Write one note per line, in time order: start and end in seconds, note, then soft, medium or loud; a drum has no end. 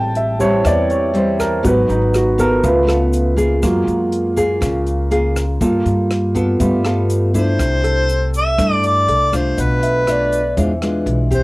0.00 0.60 A1 medium
0.00 0.62 A2 medium
0.00 0.35 G3 medium
0.00 0.36 C4 medium
0.00 0.36 E4 medium
0.00 0.14 G5 medium
0.00 1.65 A5 medium
0.15 0.40 E5 medium
0.15 closed hi-hat soft
0.39 1.10 G3 soft
0.39 1.10 G3 medium
0.39 1.11 C4 soft
0.39 1.11 C4 medium
0.39 1.11 E4 medium
0.39 0.64 C#5 medium
0.39 kick soft
0.39 closed hi-hat soft
0.39 shaker medium
0.64 1.60 E2 loud
0.64 1.61 E3 medium
0.64 0.90 D5 medium
0.64 kick medium
0.64 cross-stick medium
0.64 closed hi-hat soft
0.64 shaker medium
0.90 1.14 C#5 medium
0.90 closed hi-hat soft
0.90 shaker soft
1.14 1.60 G3 medium
1.14 1.60 C4 medium
1.14 1.60 E4 medium
1.14 1.40 C5 medium
1.14 closed hi-hat soft
1.40 1.63 A#4 medium
1.40 kick soft
1.40 cross-stick medium
1.40 closed hi-hat soft
1.40 shaker medium
1.63 1.87 G#1 medium
1.63 2.60 G#2 soft
1.63 2.34 F#3 medium
1.63 2.34 B3 medium
1.63 1.97 B3 soft
1.63 2.34 D#4 medium
1.63 1.97 F#4 soft
1.63 1.90 B4 medium
1.63 kick medium
1.63 closed hi-hat soft
1.63 shaker medium
1.89 2.59 G#1 medium
1.89 2.13 D#4 soft
1.89 closed hi-hat soft
1.89 shaker soft
2.14 2.39 F#4 medium
2.14 cross-stick medium
2.14 closed hi-hat soft
2.14 shaker medium
2.38 2.84 B3 medium
2.38 2.84 F4 medium
2.38 2.85 A4 medium
2.38 2.63 A#4 medium
2.38 kick soft
2.38 closed hi-hat soft
2.38 shaker medium
2.63 3.59 C#2 loud
2.63 3.60 C#3 medium
2.63 3.34 A3 soft
2.63 3.34 B3 soft
2.63 3.35 F4 soft
2.63 3.60 B4 medium
2.63 kick medium
2.63 closed hi-hat soft
2.63 shaker medium
2.87 3.33 B3 medium
2.87 3.33 F4 medium
2.87 3.34 A4 medium
2.87 cross-stick medium
2.87 closed hi-hat soft
2.87 shaker soft
3.13 closed hi-hat soft
3.13 shaker medium
3.37 4.32 A#3 medium
3.37 4.33 F4 medium
3.37 4.33 G#4 medium
3.37 kick soft
3.37 closed hi-hat soft
3.37 shaker medium
3.62 3.86 F#2 medium
3.62 4.59 F#3 medium
3.62 5.57 G#3 soft
3.62 5.57 A#3 soft
3.62 5.57 F4 medium
3.62 kick medium
3.62 cross-stick medium
3.62 closed hi-hat soft
3.62 shaker medium
3.87 4.58 F#2 medium
3.87 closed hi-hat soft
3.87 shaker soft
4.12 closed hi-hat soft
4.36 5.07 A#3 medium
4.36 5.08 F4 medium
4.36 5.07 G#4 medium
4.36 kick soft
4.36 closed hi-hat soft
4.36 shaker medium
4.61 5.57 C#2 loud
4.61 5.58 C#3 medium
4.61 kick medium
4.61 cross-stick medium
4.61 closed hi-hat soft
4.61 shaker medium
4.87 closed hi-hat soft
4.87 shaker soft
5.11 5.43 A#3 medium
5.11 5.43 F4 medium
5.11 5.43 G#4 medium
5.11 closed hi-hat soft
5.36 kick soft
5.36 cross-stick medium
5.36 closed hi-hat soft
5.36 shaker medium
5.60 5.84 G2 medium
5.60 6.57 G3 soft
5.60 6.10 A#3 medium
5.60 6.32 A#3 soft
5.60 6.10 F4 medium
5.60 6.32 F4 medium
5.60 6.10 A4 medium
5.60 kick medium
5.60 closed hi-hat soft
5.60 shaker medium
5.85 6.56 G2 medium
5.85 closed hi-hat soft
5.85 shaker soft
6.11 cross-stick medium
6.11 closed hi-hat soft
6.35 6.81 B3 medium
6.35 6.81 F4 medium
6.35 6.81 A4 medium
6.35 kick soft
6.35 closed hi-hat soft
6.35 shaker medium
6.60 7.55 G2 loud
6.60 7.34 G3 medium
6.60 7.55 A3 soft
6.60 7.55 B3 soft
6.60 7.55 F4 soft
6.60 kick medium
6.60 closed hi-hat soft
6.60 shaker medium
6.85 7.31 B3 medium
6.85 7.30 F4 medium
6.85 7.31 A4 medium
6.85 cross-stick medium
6.85 closed hi-hat soft
6.85 shaker soft
7.10 closed hi-hat soft
7.10 shaker medium
7.34 8.07 A3 medium
7.34 8.07 D4 medium
7.34 8.07 E4 medium
7.34 kick soft
7.34 closed hi-hat soft
7.34 shaker medium
7.38 8.32 C5 loud
7.59 8.55 C2 medium
7.59 8.56 C3 medium
7.59 kick medium
7.59 cross-stick medium
7.59 closed hi-hat medium
7.59 shaker medium
7.84 8.84 A4 medium
7.84 closed hi-hat soft
7.84 shaker soft
8.09 closed hi-hat soft
8.09 shaker medium
8.34 8.73 E5 loud
8.34 closed hi-hat soft
8.34 shaker medium
8.58 9.05 G2 medium
8.58 9.55 G3 medium
8.58 9.29 A3 medium
8.58 9.29 D4 medium
8.58 9.29 E4 medium
8.58 kick medium
8.58 cross-stick medium
8.58 closed hi-hat medium
8.58 shaker medium
8.73 8.86 D5 loud
8.83 9.37 D5 medium
8.83 closed hi-hat soft
8.83 shaker soft
9.08 9.54 C2 medium
9.08 9.79 A4 soft
9.08 closed hi-hat soft
9.32 10.03 A3 medium
9.32 10.03 D4 medium
9.32 10.04 F4 medium
9.32 9.62 C5 medium
9.32 kick medium
9.32 cross-stick medium
9.32 closed hi-hat soft
9.32 shaker medium
9.57 10.53 B1 medium
9.57 10.54 B2 soft
9.57 10.58 B4 medium
9.57 kick medium
9.57 closed hi-hat medium
9.57 shaker medium
9.83 10.78 E5 medium
9.83 closed hi-hat soft
9.83 shaker soft
10.07 10.40 A3 medium
10.07 10.41 D4 medium
10.07 10.41 F4 medium
10.07 10.58 D5 loud
10.07 10.11 E5 medium
10.07 cross-stick medium
10.07 closed hi-hat soft
10.07 shaker medium
10.32 closed hi-hat soft
10.32 shaker medium
10.57 11.03 E2 medium
10.57 11.43 E3 medium
10.57 10.71 G#3 medium
10.57 10.72 D4 medium
10.57 10.72 F4 medium
10.57 10.63 C#5 medium
10.57 kick medium
10.57 closed hi-hat medium
10.57 shaker medium
10.62 10.81 C5 medium
10.81 11.28 G#3 medium
10.81 11.28 D4 medium
10.81 11.28 F4 medium
10.81 11.16 B4 medium
10.81 cross-stick medium
10.81 closed hi-hat soft
10.81 shaker soft
11.06 11.43 B1 medium
11.06 closed hi-hat soft
11.31 11.43 C4 medium
11.31 11.43 G4 medium
11.31 11.43 C5 medium
11.31 kick soft
11.31 closed hi-hat soft
11.31 shaker medium